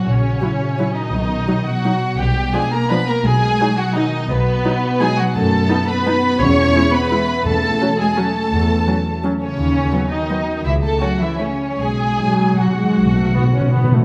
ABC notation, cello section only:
X:1
M:3/4
L:1/8
Q:1/4=167
K:B
V:1 name="Cello section" clef=bass
C,4- C, D,- | D,3 F,3 | =G,2 ^G, A, B, A, | G,3 F, D,2 |
B,,4 G, F, | [K:Bmix] A,3 B,3 | C3 B,3 | A,3 G, A,2- |
A,4 z C,- | C,3 D,3 | E, A, F, E, C,2 | G,4 F,2- |
F,4- F, z |]